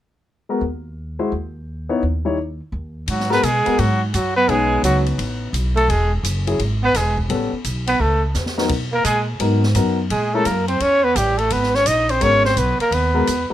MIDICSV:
0, 0, Header, 1, 7, 480
1, 0, Start_track
1, 0, Key_signature, 5, "minor"
1, 0, Tempo, 351700
1, 359, Time_signature, 4, 2, 24, 8
1, 18471, End_track
2, 0, Start_track
2, 0, Title_t, "Trumpet"
2, 0, Program_c, 0, 56
2, 4234, Note_on_c, 0, 66, 66
2, 4511, Note_off_c, 0, 66, 0
2, 4547, Note_on_c, 0, 71, 89
2, 4698, Note_on_c, 0, 68, 77
2, 4719, Note_off_c, 0, 71, 0
2, 5182, Note_on_c, 0, 66, 70
2, 5203, Note_off_c, 0, 68, 0
2, 5486, Note_off_c, 0, 66, 0
2, 5657, Note_on_c, 0, 66, 67
2, 5942, Note_off_c, 0, 66, 0
2, 5958, Note_on_c, 0, 71, 90
2, 6135, Note_on_c, 0, 68, 79
2, 6155, Note_off_c, 0, 71, 0
2, 6608, Note_off_c, 0, 68, 0
2, 6621, Note_on_c, 0, 66, 66
2, 6804, Note_off_c, 0, 66, 0
2, 7873, Note_on_c, 0, 69, 87
2, 8059, Note_on_c, 0, 68, 76
2, 8079, Note_off_c, 0, 69, 0
2, 8363, Note_off_c, 0, 68, 0
2, 9341, Note_on_c, 0, 71, 89
2, 9511, Note_on_c, 0, 68, 71
2, 9531, Note_off_c, 0, 71, 0
2, 9808, Note_off_c, 0, 68, 0
2, 10759, Note_on_c, 0, 71, 85
2, 10931, Note_on_c, 0, 69, 78
2, 10952, Note_off_c, 0, 71, 0
2, 11238, Note_off_c, 0, 69, 0
2, 12200, Note_on_c, 0, 70, 86
2, 12349, Note_off_c, 0, 70, 0
2, 12366, Note_on_c, 0, 68, 72
2, 12551, Note_off_c, 0, 68, 0
2, 13805, Note_on_c, 0, 68, 74
2, 14118, Note_on_c, 0, 69, 91
2, 14138, Note_off_c, 0, 68, 0
2, 14285, Note_on_c, 0, 70, 73
2, 14306, Note_off_c, 0, 69, 0
2, 14575, Note_off_c, 0, 70, 0
2, 14583, Note_on_c, 0, 72, 79
2, 14766, Note_on_c, 0, 73, 89
2, 14787, Note_off_c, 0, 72, 0
2, 15070, Note_on_c, 0, 71, 91
2, 15090, Note_off_c, 0, 73, 0
2, 15236, Note_on_c, 0, 67, 80
2, 15256, Note_off_c, 0, 71, 0
2, 15534, Note_on_c, 0, 69, 82
2, 15555, Note_off_c, 0, 67, 0
2, 15730, Note_on_c, 0, 71, 78
2, 15751, Note_off_c, 0, 69, 0
2, 16041, Note_on_c, 0, 73, 91
2, 16061, Note_off_c, 0, 71, 0
2, 16204, Note_on_c, 0, 75, 84
2, 16225, Note_off_c, 0, 73, 0
2, 16518, Note_on_c, 0, 72, 85
2, 16538, Note_off_c, 0, 75, 0
2, 16690, Note_on_c, 0, 73, 101
2, 16710, Note_off_c, 0, 72, 0
2, 16987, Note_off_c, 0, 73, 0
2, 16995, Note_on_c, 0, 72, 86
2, 17175, Note_on_c, 0, 71, 76
2, 17196, Note_off_c, 0, 72, 0
2, 17478, Note_off_c, 0, 71, 0
2, 17484, Note_on_c, 0, 70, 80
2, 17661, Note_on_c, 0, 71, 71
2, 17682, Note_off_c, 0, 70, 0
2, 18442, Note_off_c, 0, 71, 0
2, 18471, End_track
3, 0, Start_track
3, 0, Title_t, "Grand piano"
3, 0, Program_c, 1, 0
3, 672, Note_on_c, 1, 56, 53
3, 674, Note_on_c, 1, 66, 48
3, 678, Note_on_c, 1, 59, 48
3, 684, Note_on_c, 1, 70, 57
3, 822, Note_off_c, 1, 56, 0
3, 824, Note_off_c, 1, 66, 0
3, 826, Note_off_c, 1, 59, 0
3, 829, Note_off_c, 1, 70, 0
3, 1625, Note_on_c, 1, 56, 56
3, 1627, Note_on_c, 1, 66, 51
3, 1629, Note_on_c, 1, 64, 51
3, 1631, Note_on_c, 1, 72, 62
3, 1780, Note_off_c, 1, 56, 0
3, 1781, Note_off_c, 1, 66, 0
3, 1782, Note_off_c, 1, 64, 0
3, 1783, Note_off_c, 1, 72, 0
3, 2583, Note_on_c, 1, 59, 61
3, 2586, Note_on_c, 1, 63, 58
3, 2594, Note_on_c, 1, 73, 65
3, 2596, Note_on_c, 1, 64, 57
3, 2739, Note_off_c, 1, 59, 0
3, 2741, Note_off_c, 1, 63, 0
3, 2745, Note_off_c, 1, 73, 0
3, 2746, Note_off_c, 1, 64, 0
3, 3070, Note_on_c, 1, 55, 55
3, 3072, Note_on_c, 1, 63, 55
3, 3079, Note_on_c, 1, 64, 54
3, 3082, Note_on_c, 1, 73, 65
3, 3223, Note_off_c, 1, 55, 0
3, 3224, Note_off_c, 1, 63, 0
3, 3227, Note_off_c, 1, 64, 0
3, 3229, Note_off_c, 1, 73, 0
3, 4503, Note_on_c, 1, 56, 69
3, 4506, Note_on_c, 1, 59, 61
3, 4508, Note_on_c, 1, 70, 74
3, 4511, Note_on_c, 1, 66, 64
3, 4660, Note_off_c, 1, 56, 0
3, 4661, Note_off_c, 1, 59, 0
3, 4662, Note_off_c, 1, 70, 0
3, 4664, Note_off_c, 1, 66, 0
3, 4987, Note_on_c, 1, 59, 56
3, 4992, Note_on_c, 1, 66, 50
3, 4993, Note_on_c, 1, 56, 56
3, 4996, Note_on_c, 1, 70, 60
3, 5142, Note_off_c, 1, 59, 0
3, 5144, Note_off_c, 1, 56, 0
3, 5144, Note_off_c, 1, 66, 0
3, 5146, Note_off_c, 1, 70, 0
3, 6111, Note_on_c, 1, 59, 58
3, 6113, Note_on_c, 1, 61, 53
3, 6119, Note_on_c, 1, 71, 67
3, 6120, Note_on_c, 1, 63, 54
3, 7456, Note_off_c, 1, 59, 0
3, 7457, Note_off_c, 1, 61, 0
3, 7460, Note_off_c, 1, 63, 0
3, 7460, Note_off_c, 1, 71, 0
3, 8832, Note_on_c, 1, 54, 54
3, 8834, Note_on_c, 1, 61, 56
3, 8834, Note_on_c, 1, 64, 53
3, 8836, Note_on_c, 1, 68, 67
3, 8982, Note_off_c, 1, 54, 0
3, 8983, Note_off_c, 1, 61, 0
3, 8983, Note_off_c, 1, 64, 0
3, 8984, Note_off_c, 1, 68, 0
3, 9957, Note_on_c, 1, 55, 53
3, 9964, Note_on_c, 1, 59, 51
3, 9965, Note_on_c, 1, 61, 49
3, 9966, Note_on_c, 1, 69, 62
3, 10240, Note_off_c, 1, 55, 0
3, 10243, Note_off_c, 1, 59, 0
3, 10244, Note_off_c, 1, 61, 0
3, 10244, Note_off_c, 1, 69, 0
3, 11705, Note_on_c, 1, 54, 64
3, 11706, Note_on_c, 1, 63, 58
3, 11710, Note_on_c, 1, 59, 57
3, 11713, Note_on_c, 1, 70, 64
3, 11857, Note_off_c, 1, 54, 0
3, 11857, Note_off_c, 1, 63, 0
3, 11859, Note_off_c, 1, 59, 0
3, 11861, Note_off_c, 1, 70, 0
3, 12828, Note_on_c, 1, 54, 53
3, 12836, Note_on_c, 1, 59, 47
3, 12837, Note_on_c, 1, 63, 53
3, 12840, Note_on_c, 1, 70, 64
3, 13114, Note_off_c, 1, 54, 0
3, 13118, Note_off_c, 1, 59, 0
3, 13118, Note_off_c, 1, 63, 0
3, 13120, Note_off_c, 1, 70, 0
3, 13309, Note_on_c, 1, 54, 57
3, 13313, Note_on_c, 1, 63, 48
3, 13315, Note_on_c, 1, 59, 52
3, 13316, Note_on_c, 1, 70, 62
3, 13594, Note_off_c, 1, 54, 0
3, 13596, Note_off_c, 1, 63, 0
3, 13597, Note_off_c, 1, 59, 0
3, 13598, Note_off_c, 1, 70, 0
3, 14114, Note_on_c, 1, 56, 63
3, 14117, Note_on_c, 1, 61, 53
3, 14119, Note_on_c, 1, 64, 55
3, 14122, Note_on_c, 1, 70, 66
3, 14260, Note_off_c, 1, 56, 0
3, 14262, Note_off_c, 1, 61, 0
3, 14263, Note_off_c, 1, 64, 0
3, 14264, Note_off_c, 1, 70, 0
3, 16661, Note_on_c, 1, 66, 46
3, 16661, Note_on_c, 1, 70, 57
3, 16662, Note_on_c, 1, 56, 57
3, 16662, Note_on_c, 1, 59, 50
3, 16950, Note_off_c, 1, 56, 0
3, 16950, Note_off_c, 1, 59, 0
3, 16950, Note_off_c, 1, 66, 0
3, 16950, Note_off_c, 1, 70, 0
3, 17938, Note_on_c, 1, 56, 57
3, 17939, Note_on_c, 1, 59, 57
3, 17945, Note_on_c, 1, 70, 67
3, 17947, Note_on_c, 1, 66, 56
3, 18093, Note_off_c, 1, 56, 0
3, 18093, Note_off_c, 1, 59, 0
3, 18096, Note_off_c, 1, 70, 0
3, 18097, Note_off_c, 1, 66, 0
3, 18426, Note_on_c, 1, 66, 59
3, 18427, Note_on_c, 1, 56, 64
3, 18428, Note_on_c, 1, 59, 61
3, 18471, Note_off_c, 1, 56, 0
3, 18471, Note_off_c, 1, 59, 0
3, 18471, Note_off_c, 1, 66, 0
3, 18471, End_track
4, 0, Start_track
4, 0, Title_t, "Tenor saxophone"
4, 0, Program_c, 2, 66
4, 4217, Note_on_c, 2, 54, 55
4, 4502, Note_off_c, 2, 54, 0
4, 4526, Note_on_c, 2, 59, 77
4, 4707, Note_on_c, 2, 56, 67
4, 4727, Note_off_c, 2, 59, 0
4, 5175, Note_on_c, 2, 54, 56
4, 5195, Note_off_c, 2, 56, 0
4, 5482, Note_off_c, 2, 54, 0
4, 5672, Note_on_c, 2, 54, 56
4, 5950, Note_off_c, 2, 54, 0
4, 5960, Note_on_c, 2, 59, 79
4, 6143, Note_on_c, 2, 56, 66
4, 6163, Note_off_c, 2, 59, 0
4, 6600, Note_off_c, 2, 56, 0
4, 6608, Note_on_c, 2, 54, 65
4, 6897, Note_off_c, 2, 54, 0
4, 7858, Note_on_c, 2, 57, 74
4, 8049, Note_on_c, 2, 56, 61
4, 8069, Note_off_c, 2, 57, 0
4, 8358, Note_off_c, 2, 56, 0
4, 9324, Note_on_c, 2, 59, 75
4, 9496, Note_on_c, 2, 56, 57
4, 9517, Note_off_c, 2, 59, 0
4, 9801, Note_off_c, 2, 56, 0
4, 10749, Note_on_c, 2, 59, 80
4, 10919, Note_on_c, 2, 57, 65
4, 10939, Note_off_c, 2, 59, 0
4, 11231, Note_off_c, 2, 57, 0
4, 12177, Note_on_c, 2, 58, 72
4, 12329, Note_off_c, 2, 58, 0
4, 12337, Note_on_c, 2, 56, 66
4, 12637, Note_off_c, 2, 56, 0
4, 13796, Note_on_c, 2, 56, 65
4, 14104, Note_on_c, 2, 57, 73
4, 14125, Note_off_c, 2, 56, 0
4, 14288, Note_on_c, 2, 58, 63
4, 14308, Note_off_c, 2, 57, 0
4, 14571, Note_off_c, 2, 58, 0
4, 14579, Note_on_c, 2, 60, 77
4, 14762, Note_on_c, 2, 61, 79
4, 14783, Note_off_c, 2, 60, 0
4, 15069, Note_on_c, 2, 59, 75
4, 15089, Note_off_c, 2, 61, 0
4, 15264, Note_on_c, 2, 55, 65
4, 15285, Note_off_c, 2, 59, 0
4, 15553, Note_on_c, 2, 57, 71
4, 15573, Note_off_c, 2, 55, 0
4, 15735, Note_on_c, 2, 59, 66
4, 15755, Note_off_c, 2, 57, 0
4, 16043, Note_on_c, 2, 61, 79
4, 16064, Note_off_c, 2, 59, 0
4, 16214, Note_on_c, 2, 63, 73
4, 16234, Note_off_c, 2, 61, 0
4, 16528, Note_on_c, 2, 60, 72
4, 16549, Note_off_c, 2, 63, 0
4, 16715, Note_on_c, 2, 61, 78
4, 16735, Note_off_c, 2, 60, 0
4, 17008, Note_off_c, 2, 61, 0
4, 17016, Note_on_c, 2, 60, 66
4, 17190, Note_on_c, 2, 59, 61
4, 17210, Note_off_c, 2, 60, 0
4, 17480, Note_off_c, 2, 59, 0
4, 17488, Note_on_c, 2, 58, 71
4, 17664, Note_on_c, 2, 59, 60
4, 17685, Note_off_c, 2, 58, 0
4, 18444, Note_off_c, 2, 59, 0
4, 18471, End_track
5, 0, Start_track
5, 0, Title_t, "Upright bass"
5, 0, Program_c, 3, 32
5, 833, Note_on_c, 3, 39, 67
5, 1610, Note_off_c, 3, 39, 0
5, 1799, Note_on_c, 3, 39, 71
5, 2574, Note_off_c, 3, 39, 0
5, 2765, Note_on_c, 3, 39, 68
5, 3537, Note_off_c, 3, 39, 0
5, 3716, Note_on_c, 3, 39, 70
5, 4166, Note_off_c, 3, 39, 0
5, 4197, Note_on_c, 3, 44, 75
5, 4666, Note_off_c, 3, 44, 0
5, 4682, Note_on_c, 3, 47, 79
5, 4975, Note_off_c, 3, 47, 0
5, 5167, Note_on_c, 3, 44, 73
5, 5630, Note_off_c, 3, 44, 0
5, 5647, Note_on_c, 3, 42, 82
5, 6105, Note_off_c, 3, 42, 0
5, 6113, Note_on_c, 3, 35, 77
5, 6583, Note_off_c, 3, 35, 0
5, 6588, Note_on_c, 3, 37, 78
5, 7060, Note_off_c, 3, 37, 0
5, 7071, Note_on_c, 3, 33, 77
5, 7538, Note_off_c, 3, 33, 0
5, 7546, Note_on_c, 3, 35, 81
5, 8018, Note_off_c, 3, 35, 0
5, 8027, Note_on_c, 3, 28, 80
5, 8499, Note_off_c, 3, 28, 0
5, 8508, Note_on_c, 3, 30, 77
5, 8979, Note_off_c, 3, 30, 0
5, 8995, Note_on_c, 3, 32, 75
5, 9462, Note_off_c, 3, 32, 0
5, 9473, Note_on_c, 3, 28, 82
5, 9941, Note_off_c, 3, 28, 0
5, 9952, Note_on_c, 3, 33, 76
5, 10247, Note_off_c, 3, 33, 0
5, 10436, Note_on_c, 3, 35, 80
5, 10902, Note_off_c, 3, 35, 0
5, 10911, Note_on_c, 3, 37, 72
5, 11379, Note_off_c, 3, 37, 0
5, 11390, Note_on_c, 3, 40, 86
5, 11855, Note_off_c, 3, 40, 0
5, 11863, Note_on_c, 3, 47, 74
5, 12334, Note_off_c, 3, 47, 0
5, 12345, Note_on_c, 3, 46, 78
5, 12815, Note_off_c, 3, 46, 0
5, 12823, Note_on_c, 3, 44, 78
5, 13294, Note_off_c, 3, 44, 0
5, 13301, Note_on_c, 3, 42, 83
5, 13772, Note_off_c, 3, 42, 0
5, 13788, Note_on_c, 3, 46, 74
5, 14256, Note_off_c, 3, 46, 0
5, 14267, Note_on_c, 3, 42, 82
5, 14736, Note_off_c, 3, 42, 0
5, 14746, Note_on_c, 3, 40, 74
5, 15215, Note_off_c, 3, 40, 0
5, 15222, Note_on_c, 3, 33, 76
5, 15693, Note_off_c, 3, 33, 0
5, 15709, Note_on_c, 3, 32, 80
5, 16176, Note_off_c, 3, 32, 0
5, 16183, Note_on_c, 3, 34, 76
5, 16654, Note_off_c, 3, 34, 0
5, 16664, Note_on_c, 3, 32, 78
5, 17134, Note_off_c, 3, 32, 0
5, 17143, Note_on_c, 3, 35, 84
5, 17440, Note_off_c, 3, 35, 0
5, 17621, Note_on_c, 3, 39, 84
5, 18093, Note_off_c, 3, 39, 0
5, 18118, Note_on_c, 3, 40, 75
5, 18408, Note_off_c, 3, 40, 0
5, 18471, End_track
6, 0, Start_track
6, 0, Title_t, "Muted upright bass strokes"
6, 5008, Note_on_c, 9, 29, 35
6, 5145, Note_off_c, 9, 29, 0
6, 10271, Note_on_c, 9, 29, 35
6, 10408, Note_off_c, 9, 29, 0
6, 17463, Note_on_c, 9, 29, 36
6, 17599, Note_off_c, 9, 29, 0
6, 18429, Note_on_c, 9, 29, 34
6, 18471, Note_off_c, 9, 29, 0
6, 18471, End_track
7, 0, Start_track
7, 0, Title_t, "Drums"
7, 4198, Note_on_c, 9, 51, 56
7, 4334, Note_off_c, 9, 51, 0
7, 4366, Note_on_c, 9, 38, 28
7, 4502, Note_off_c, 9, 38, 0
7, 4525, Note_on_c, 9, 38, 36
7, 4662, Note_off_c, 9, 38, 0
7, 4686, Note_on_c, 9, 44, 50
7, 4686, Note_on_c, 9, 51, 57
7, 4822, Note_off_c, 9, 44, 0
7, 4822, Note_off_c, 9, 51, 0
7, 4994, Note_on_c, 9, 51, 37
7, 5131, Note_off_c, 9, 51, 0
7, 5166, Note_on_c, 9, 51, 52
7, 5302, Note_off_c, 9, 51, 0
7, 5647, Note_on_c, 9, 44, 45
7, 5647, Note_on_c, 9, 51, 54
7, 5784, Note_off_c, 9, 44, 0
7, 5784, Note_off_c, 9, 51, 0
7, 6125, Note_on_c, 9, 51, 46
7, 6261, Note_off_c, 9, 51, 0
7, 6601, Note_on_c, 9, 44, 57
7, 6601, Note_on_c, 9, 51, 57
7, 6737, Note_off_c, 9, 44, 0
7, 6737, Note_off_c, 9, 51, 0
7, 6911, Note_on_c, 9, 51, 35
7, 7048, Note_off_c, 9, 51, 0
7, 7081, Note_on_c, 9, 51, 52
7, 7217, Note_off_c, 9, 51, 0
7, 7561, Note_on_c, 9, 44, 46
7, 7561, Note_on_c, 9, 51, 55
7, 7697, Note_off_c, 9, 44, 0
7, 7697, Note_off_c, 9, 51, 0
7, 7877, Note_on_c, 9, 51, 38
7, 8013, Note_off_c, 9, 51, 0
7, 8047, Note_on_c, 9, 51, 55
7, 8183, Note_off_c, 9, 51, 0
7, 8523, Note_on_c, 9, 44, 54
7, 8523, Note_on_c, 9, 51, 65
7, 8660, Note_off_c, 9, 44, 0
7, 8660, Note_off_c, 9, 51, 0
7, 8833, Note_on_c, 9, 51, 40
7, 8970, Note_off_c, 9, 51, 0
7, 9000, Note_on_c, 9, 51, 48
7, 9137, Note_off_c, 9, 51, 0
7, 9478, Note_on_c, 9, 44, 48
7, 9478, Note_on_c, 9, 51, 58
7, 9482, Note_on_c, 9, 38, 32
7, 9615, Note_off_c, 9, 44, 0
7, 9615, Note_off_c, 9, 51, 0
7, 9619, Note_off_c, 9, 38, 0
7, 9795, Note_on_c, 9, 36, 43
7, 9931, Note_off_c, 9, 36, 0
7, 9958, Note_on_c, 9, 51, 51
7, 10095, Note_off_c, 9, 51, 0
7, 10433, Note_on_c, 9, 44, 50
7, 10433, Note_on_c, 9, 51, 52
7, 10570, Note_off_c, 9, 44, 0
7, 10570, Note_off_c, 9, 51, 0
7, 10746, Note_on_c, 9, 51, 53
7, 10882, Note_off_c, 9, 51, 0
7, 11388, Note_on_c, 9, 44, 46
7, 11392, Note_on_c, 9, 38, 36
7, 11524, Note_off_c, 9, 44, 0
7, 11528, Note_off_c, 9, 38, 0
7, 11547, Note_on_c, 9, 38, 45
7, 11684, Note_off_c, 9, 38, 0
7, 11709, Note_on_c, 9, 38, 67
7, 11846, Note_off_c, 9, 38, 0
7, 11864, Note_on_c, 9, 51, 70
7, 11869, Note_on_c, 9, 36, 67
7, 12000, Note_off_c, 9, 51, 0
7, 12005, Note_off_c, 9, 36, 0
7, 12345, Note_on_c, 9, 44, 53
7, 12345, Note_on_c, 9, 51, 57
7, 12482, Note_off_c, 9, 44, 0
7, 12482, Note_off_c, 9, 51, 0
7, 12824, Note_on_c, 9, 51, 56
7, 12961, Note_off_c, 9, 51, 0
7, 13145, Note_on_c, 9, 38, 47
7, 13281, Note_off_c, 9, 38, 0
7, 13302, Note_on_c, 9, 44, 53
7, 13302, Note_on_c, 9, 51, 59
7, 13438, Note_off_c, 9, 44, 0
7, 13438, Note_off_c, 9, 51, 0
7, 13787, Note_on_c, 9, 51, 54
7, 13924, Note_off_c, 9, 51, 0
7, 14264, Note_on_c, 9, 44, 48
7, 14264, Note_on_c, 9, 51, 61
7, 14401, Note_off_c, 9, 44, 0
7, 14401, Note_off_c, 9, 51, 0
7, 14577, Note_on_c, 9, 51, 39
7, 14714, Note_off_c, 9, 51, 0
7, 14744, Note_on_c, 9, 51, 51
7, 14881, Note_off_c, 9, 51, 0
7, 15226, Note_on_c, 9, 44, 51
7, 15226, Note_on_c, 9, 51, 56
7, 15362, Note_off_c, 9, 44, 0
7, 15362, Note_off_c, 9, 51, 0
7, 15538, Note_on_c, 9, 51, 38
7, 15674, Note_off_c, 9, 51, 0
7, 15700, Note_on_c, 9, 51, 60
7, 15836, Note_off_c, 9, 51, 0
7, 15870, Note_on_c, 9, 38, 28
7, 16007, Note_off_c, 9, 38, 0
7, 16029, Note_on_c, 9, 38, 39
7, 16165, Note_off_c, 9, 38, 0
7, 16183, Note_on_c, 9, 44, 55
7, 16183, Note_on_c, 9, 51, 63
7, 16319, Note_off_c, 9, 44, 0
7, 16319, Note_off_c, 9, 51, 0
7, 16502, Note_on_c, 9, 51, 40
7, 16639, Note_off_c, 9, 51, 0
7, 16664, Note_on_c, 9, 51, 53
7, 16801, Note_off_c, 9, 51, 0
7, 16990, Note_on_c, 9, 38, 44
7, 17126, Note_off_c, 9, 38, 0
7, 17153, Note_on_c, 9, 44, 44
7, 17153, Note_on_c, 9, 51, 53
7, 17289, Note_off_c, 9, 44, 0
7, 17289, Note_off_c, 9, 51, 0
7, 17471, Note_on_c, 9, 51, 41
7, 17608, Note_off_c, 9, 51, 0
7, 17636, Note_on_c, 9, 51, 54
7, 17773, Note_off_c, 9, 51, 0
7, 18115, Note_on_c, 9, 44, 58
7, 18115, Note_on_c, 9, 51, 59
7, 18251, Note_off_c, 9, 44, 0
7, 18251, Note_off_c, 9, 51, 0
7, 18471, End_track
0, 0, End_of_file